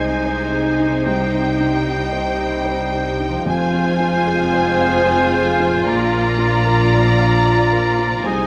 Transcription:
0.00 1.03 C2 medium
0.00 3.43 C2 medium
0.00 0.87 C3 medium
0.00 3.43 C3 medium
0.00 1.03 G#3 medium
0.00 0.92 C4 medium
0.00 1.10 C4 soft
0.00 0.79 D#4 soft
0.00 0.96 D#4 soft
0.00 3.20 D#4 medium
0.00 3.31 D#4 medium
0.00 3.47 D#4 medium
0.00 0.53 G#4 medium
0.00 1.08 G#4 soft
0.00 0.16 C5 medium
0.00 3.16 C5 medium
0.00 3.43 C5 medium
0.00 0.42 D#5 medium
0.00 0.75 G#5 medium
0.00 1.03 G#5 medium
0.26 0.69 C5 medium
0.53 0.96 G#4 medium
0.79 1.07 D#4 soft
0.89 3.41 C3 medium
0.93 3.33 C4 medium
0.97 3.46 D#4 medium
1.02 3.48 G4 medium
1.06 3.43 C2 medium
1.06 3.31 G3 medium
1.06 3.43 G5 medium
1.06 3.44 G5 medium
1.33 1.76 C4 medium
1.60 2.03 D#4 medium
1.87 2.29 G4 medium
2.13 2.55 C5 medium
2.39 2.82 D#5 medium
2.66 3.09 C5 medium
2.92 3.36 G4 medium
3.20 3.47 D#4 medium
3.29 7.19 F3 medium
3.34 5.84 C4 medium
3.38 5.77 F4 medium
3.43 5.83 F2 medium
3.43 5.89 G#4 medium
3.47 5.84 F1 medium
3.47 5.84 F2 medium
3.47 5.84 G#3 loud
3.47 5.84 C4 medium
3.47 8.21 F4 medium
3.47 8.25 F4 medium
3.47 5.84 C5 medium
3.47 5.90 C5 medium
3.47 5.89 G#5 medium
3.47 5.84 G#5 medium
3.73 4.16 C4 medium
4.00 4.43 F4 medium
4.27 4.70 G#4 medium
4.54 4.97 C5 medium
4.80 5.24 F5 medium
5.06 5.50 C5 medium
5.33 5.76 G#4 medium
5.60 5.87 F4 medium
5.70 8.19 A#2 medium
5.74 8.21 D4 medium
5.78 8.24 F4 medium
5.83 8.20 A#1 medium
5.83 8.26 A#4 medium
5.83 8.25 A#5 medium
5.87 8.25 A#1 medium
5.87 8.25 A#2 medium
5.87 8.21 F3 medium
5.87 8.21 D4 medium
5.87 8.25 D5 medium
5.87 8.27 D5 medium
5.87 7.98 A#5 medium
6.13 6.56 D4 medium
6.39 6.82 F4 medium
6.66 7.09 A#4 medium
6.93 7.36 D5 medium
7.19 7.62 F5 medium
7.45 7.88 D5 medium
7.72 8.14 A#4 medium
7.99 8.25 F4 soft
8.07 8.47 C3 medium
8.11 8.47 C4 medium
8.16 8.47 D#4 medium
8.20 8.47 C2 medium
8.20 8.47 G#4 medium
8.20 8.47 G#5 medium
8.25 8.47 C2 medium
8.25 8.47 C3 medium
8.25 8.47 G#3 medium
8.25 8.47 D#4 medium
8.25 8.47 G#4 medium
8.25 8.47 C5 medium
8.25 8.47 D#5 medium
8.25 8.47 G#5 medium

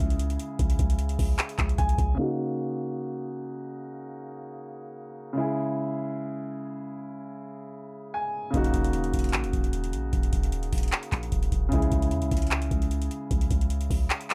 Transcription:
0.00 0.38 C#2 loud
0.00 2.13 C#3 medium
0.00 2.14 G#3 medium
0.00 2.15 E4 medium
0.00 2.16 G#4 medium
0.00 kick medium
0.10 closed hi-hat medium
0.19 closed hi-hat medium
0.30 closed hi-hat medium
0.39 closed hi-hat medium
0.59 0.78 C#2 loud
0.59 kick loud
0.59 closed hi-hat medium
0.70 closed hi-hat medium
0.79 1.17 C#2 loud
0.79 kick loud
0.79 closed hi-hat medium
0.90 closed hi-hat medium
0.99 closed hi-hat medium
1.09 closed hi-hat medium
1.19 1.38 C#2 loud
1.19 kick medium
1.19 open hi-hat medium
1.39 clap loud
1.39 closed hi-hat medium
1.49 closed hi-hat medium
1.59 1.78 C#2 loud
1.59 kick loud
1.59 clap medium
1.59 closed hi-hat medium
1.69 closed hi-hat medium
1.78 1.98 C#2 loud
1.78 2.15 G#5 medium
1.78 kick loud
1.78 closed hi-hat medium
1.89 closed hi-hat medium
1.98 2.17 C#2 loud
1.98 kick loud
1.98 closed hi-hat medium
2.15 5.30 C#3 medium
2.15 5.31 A#3 medium
2.19 5.33 D#4 medium
2.19 5.34 F#4 medium
5.33 8.48 C#3 medium
5.33 8.49 G#3 medium
5.37 8.51 E4 medium
5.37 8.52 G#4 medium
8.14 8.51 G#5 medium
8.50 8.73 D#1 loud
8.50 11.66 C#3 medium
8.50 11.67 A#3 medium
8.50 kick loud
8.50 closed hi-hat medium
8.55 11.68 D#4 medium
8.55 11.69 F#4 medium
8.64 closed hi-hat medium
8.74 9.12 D#1 loud
8.74 kick loud
8.74 closed hi-hat medium
8.84 closed hi-hat medium
8.93 closed hi-hat medium
9.04 closed hi-hat medium
9.14 9.35 D#1 loud
9.14 kick medium
9.14 closed hi-hat medium
9.19 closed hi-hat medium
9.24 closed hi-hat medium
9.29 closed hi-hat soft
9.33 9.45 A#1 loud
9.33 clap loud
9.33 closed hi-hat medium
9.44 9.53 D#1 loud
9.44 closed hi-hat medium
9.53 9.95 D#1 loud
9.53 kick loud
9.53 closed hi-hat medium
9.64 closed hi-hat medium
9.73 closed hi-hat medium
9.84 closed hi-hat medium
9.93 10.12 A#1 loud
9.93 closed hi-hat medium
10.13 10.32 D#1 loud
10.13 kick loud
10.13 closed hi-hat medium
10.23 closed hi-hat medium
10.33 10.71 D#1 loud
10.33 kick loud
10.33 closed hi-hat medium
10.43 closed hi-hat medium
10.52 closed hi-hat medium
10.63 closed hi-hat medium
10.73 10.92 D#1 loud
10.73 kick medium
10.73 closed hi-hat medium
10.73 open hi-hat medium
10.78 closed hi-hat medium
10.83 closed hi-hat medium
10.88 closed hi-hat soft
10.92 clap loud
10.92 closed hi-hat medium
11.03 closed hi-hat medium
11.12 11.31 A#1 loud
11.12 kick medium
11.12 clap medium
11.12 closed hi-hat medium
11.23 closed hi-hat medium
11.32 11.51 D#1 loud
11.32 kick loud
11.32 closed hi-hat medium
11.43 closed hi-hat medium
11.52 11.71 D#1 loud
11.52 kick loud
11.52 closed hi-hat medium
11.69 11.91 C#2 loud
11.69 14.34 C#3 medium
11.69 14.34 G#3 medium
11.69 kick loud
11.69 closed hi-hat medium
11.73 14.34 E4 medium
11.73 14.34 G#4 medium
11.82 closed hi-hat medium
11.92 12.13 C#2 loud
11.92 kick loud
11.92 closed hi-hat medium
12.02 closed hi-hat medium
12.11 12.24 E2 loud
12.11 closed hi-hat medium
12.22 12.31 C#2 loud
12.22 closed hi-hat medium
12.31 12.70 C#2 loud
12.31 kick medium
12.31 closed hi-hat medium
12.37 closed hi-hat medium
12.42 closed hi-hat medium
12.47 closed hi-hat soft
12.51 clap loud
12.51 closed hi-hat medium
12.62 closed hi-hat medium
12.71 13.09 C#2 loud
12.71 kick medium
12.71 closed hi-hat medium
12.82 closed hi-hat medium
12.91 closed hi-hat medium
13.02 closed hi-hat medium
13.11 closed hi-hat medium
13.31 13.50 C#2 loud
13.31 kick loud
13.31 closed hi-hat medium
13.41 closed hi-hat medium
13.51 13.89 C#2 loud
13.51 kick loud
13.51 closed hi-hat medium
13.61 closed hi-hat medium
13.70 closed hi-hat medium
13.81 closed hi-hat medium
13.90 14.09 C#2 loud
13.90 kick medium
13.90 open hi-hat medium
14.10 clap loud
14.10 closed hi-hat medium
14.21 closed hi-hat medium
14.30 clap medium
14.30 closed hi-hat medium

